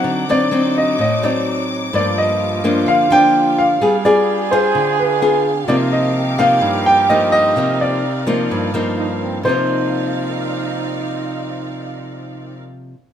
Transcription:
<<
  \new Staff \with { instrumentName = "Grand piano" } { \time 4/4 \key c \minor \tempo 4 = 128 fis''8 d''4 ees''8 ees''8 d''4 r8 | d''8 ees''4. f''8 g''4 f''8~ | f''8 d''4 c''4 b'4 r8 | d''8 ees''4 f''4 g''8 ees''8 ees''8~ |
ees''8 d''2 r4. | c''1~ | c''1 | }
  \new Staff \with { instrumentName = "String section" } { \time 4/4 \key c \minor << { <ees' d'''>1 | f''1 | g''1 | d'''1 |
d''1 | <c' ees' bes' d'' f''>1~ | <c' ees' bes' d'' f''>1 | } \\ { <c' fis'>1 | <bes g'>1 | <d' aes'>1 | <c' ees' bes'>1~ |
<c' ees' bes'>1 | r1 | r1 | } >> }
  \new Staff \with { instrumentName = "Trombone" } { \time 4/4 \key c \minor r1 | f'1 | aes'1 | f'4 g'2.~ |
g'2~ g'8 r8 ees'8 c'8 | ees'1~ | ees'1 | }
  \new Staff \with { instrumentName = "Nylon-string guitar" } { \time 4/4 \key c \minor << { <fis c' ees'>8 <fis c' ees'>8 <fis c' ees'>4 r8 <fis c' ees'>4. | <f bes>4. <f bes d'>4 <f bes d'>4. | <b f' aes'>8 <b f' aes'>4 <f' aes'>4. <b f' aes'>8 r8 | <f bes ees'>4. <f bes ees'>4. <f bes ees'>4 |
<f bes ees'>4 r8 <f bes ees'>4 <f bes ees'>4. | <c f bes ees'>1~ | <c f bes ees'>1 | } \\ { d2 a,2 | g,2 d2 | g2 d2 | c2 g,2 |
c2 g,2 | r1 | r1 | } >> }
>>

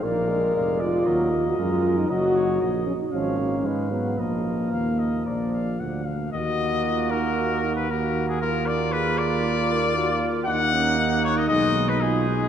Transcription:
<<
  \new Staff \with { instrumentName = "Trumpet" } { \time 4/4 \key ees \minor \tempo 4 = 116 f''4 f''8 d''8 ees''2 | ees''8 des''8 ees''8 r8 f''4 f''4 | ees''4 f''8 ees''8 d''8 f''8 ges''8 f''8 | ees''4. bes'4~ bes'16 ces''16 bes'8. aes'16 |
bes'8 d''8 ces''8 d''2~ d''8 | ges''4. des''16 ees''16 ees''8. ces''16 aes'4 | }
  \new Staff \with { instrumentName = "Flugelhorn" } { \time 4/4 \key ees \minor d''4 d''4 bes'4 bes'4 | ees''4. r8 des''4 ces''4 | bes'2 d''4. r8 | ges'2. ges'4 |
f'1 | ees'2 ees'4 ees'4 | }
  \new Staff \with { instrumentName = "French horn" } { \time 4/4 \key ees \minor bes'4. f'4~ f'16 ges'16 f'8. ees'16 | ges'4. des'16 ees'16 des'4. ces'8 | bes2.~ bes8 r8 | ges'4 f'8 ees'8 ges'8 ees'8 ges'4 |
bes'4 aes'4 f'8 bes'8 ges'8 f'8 | ees'8 des'8 ees'2 f'8 ees'8 | }
  \new Staff \with { instrumentName = "Trombone" } { \clef bass \time 4/4 \key ees \minor bes8 aes4. ges8 bes8 aes4 | ges4. r8 f8 bes8 aes8 ges8 | f2 f4. r8 | bes2. bes4 |
bes1 | bes2 aes4 aes4 | }
  \new Staff \with { instrumentName = "Tuba" } { \clef bass \time 4/4 \key ees \minor bes,,4 f,,4 ees,4 ges,4 | ges,,4 bes,,8 r8 aes,,4 aes,4 | bes,,4 ees,4 bes,,4 d,4 | ees,1~ |
ees,1 | ees,2 ces,2 | }
>>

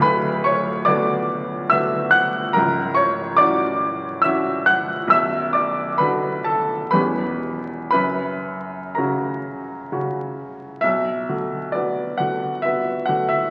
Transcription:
<<
  \new Staff \with { instrumentName = "Grand piano" } { \time 3/4 \key b \minor \tempo 4 = 67 <b' b''>8 <cis'' cis'''>8 <d'' d'''>4 <e'' e'''>8 <fis'' fis'''>8 | <ais' ais''>8 <cis'' cis'''>8 <d'' d'''>4 <e'' e'''>8 <fis'' fis'''>8 | <e'' e'''>8 <d'' d'''>8 <b' b''>8 <a' a''>8 <b' b''>4 | <b' b''>4 <ais' ais''>4. r8 |
e''4 d''8 fis''8 e''8 fis''16 e''16 | }
  \new Staff \with { instrumentName = "Grand piano" } { \time 3/4 \key b \minor <d,, d,>4 <d b fis'>4 <d b fis'>4 | <cis,, cis,>4 <e cis' fis'>4 <e cis' fis'>4 | <b,,, b,,>4 <d d' fis'>4 <e,, e, e cis' g'>4 | <fis,, fis,>4 <cis cis' fis'>4 <cis cis' fis'>4 |
b,,8 <d fis'>8 <b fis'>8 <d fis'>8 <b fis'>8 <d fis'>8 | }
>>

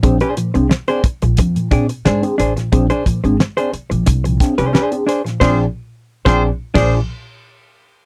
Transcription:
<<
  \new Staff \with { instrumentName = "Hollow-body jazz guitar" } { \time 4/4 \key bes \mixolydian \tempo 4 = 89 r16 <d' aes' c''>16 r8. <d' aes' c''>16 r4 <d' aes' d''>16 r16 <d' aes' c''>16 r16 <d' aes' c''>16 r16 | r16 <d' aes' c''>16 r8. <d' aes' c''>16 r4 r16 <d' aes' c''>16 <d' aes' c''>16 r16 <d' aes' c''>16 r16 | <d' aes' c''>8 r8. <d' aes' c''>8 r16 <d' aes' d''>8 r4. | }
  \new Staff \with { instrumentName = "Horn section" } { \time 4/4 \key bes \mixolydian r1 | r1 | <f' aes' c''>8 r8. <f' aes' c''>8 r16 <f' aes' c''>8 r4. | }
  \new Staff \with { instrumentName = "Tine electric piano" } { \time 4/4 \key bes \mixolydian <c' d' aes'>16 r16 <bes, f>16 <c' d' aes'>16 r16 <c' d' aes'>16 r16 <bes, f>16 <d' aes'>16 <bes, f>16 <c' d' aes'>16 r8 <c' d' aes'>16 r16 <bes, f>16 | <c' d' aes'>16 r16 <bes, f>16 <c' d' aes'>16 r16 <c' d' aes'>16 r16 <bes, f>16 <d' aes'>16 <bes, f>16 <c' d' aes'>16 r8 <c' d' aes'>16 r16 <bes, f>16 | <c' d' aes'>8 r8. <c' d' aes'>8 r16 <bes, f>8 r4. | }
  \new Staff \with { instrumentName = "Upright bass" } { \clef bass \time 4/4 \key bes \mixolydian bes,,16 r8 c,16 r8. bes,,16 f,16 r16 bes,16 r16 aes,16 r16 a,,16 r16 | bes,,16 r8 aes,,16 r8. bes,,16 c,8 r16 c,16 r4 | bes,,8 r8. bes,,8 r16 bes,,8 r4. | }
  \new DrumStaff \with { instrumentName = "Drums" } \drummode { \time 4/4 <hh bd>16 hh16 hh16 hh16 sn16 hh16 <hh bd>16 hh16 <hh bd>16 hh16 <hh bd>16 hh16 sn16 hh16 hh16 <hh sn>16 | <hh bd>16 hh16 <hh bd>16 hh16 sn16 hh16 hh16 hh16 <hh bd>16 hh16 <hh bd sn>16 hh16 sn16 hh16 hh16 <hh sn>16 | <cymc bd sn>4 r16 <bd sn>8. <cymc bd sn>4 r4 | }
>>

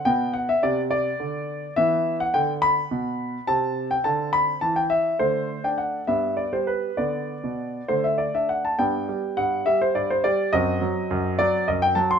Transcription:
<<
  \new Staff \with { instrumentName = "Grand piano" } { \time 6/8 \key b \phrygian \tempo 4. = 69 g''8 fis''16 e''16 d''8 d''4. | \key g \major e''8. fis''16 g''8 b''4. | a''8. g''16 a''8 b''8 a''16 g''16 e''8 | c''8. g''16 fis''8 e''8 d''16 c''16 b'8 |
d''4. c''16 e''16 d''16 e''16 fis''16 a''16 | g''4 fis''8 e''16 c''16 d''16 c''16 d''8 | dis''4. d''8 dis''16 g''16 a''16 c'''16 | }
  \new Staff \with { instrumentName = "Grand piano" } { \clef bass \time 6/8 \key b \phrygian << { b2. | \key g \major b2. | c'2. | a4. b4. |
b4. a4. | <b d'>2. | <c' fis'>2. | } \\ { b,4 c4 d4 | e4 d4 b,4 | c4 d4 e4 | d8. d'8. g,8. g8. |
d8. b,8. d8. d'8. | g,8 g8 g,8 g8 g,8 g8 | fis,8 fis8 fis,8 fis8 fis,8 fis8 | } >> }
>>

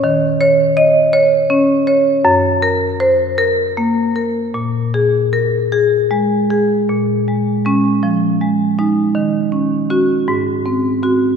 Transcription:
\new Staff \with { instrumentName = "Marimba" } { \time 6/8 \key bes \minor \tempo 4. = 53 << { r4 ees''8 r4. | r4 c''8 r4. | r4 bes'8 r4. | r4 des'8 r4 ees'8 |
r4 ges'8 r4 ges'8 | } \\ { ees8 des''4 des''8 des'8 des''8 | ges,8 bes'4 bes'8 bes8 bes'8 | bes,8 aes'4 aes'8 aes8 aes'8 | bes,8 aes8 aes8 f8 aes8 aes8 |
ees8 des'8 des'8 aes,8 c'8 c'8 | } >> }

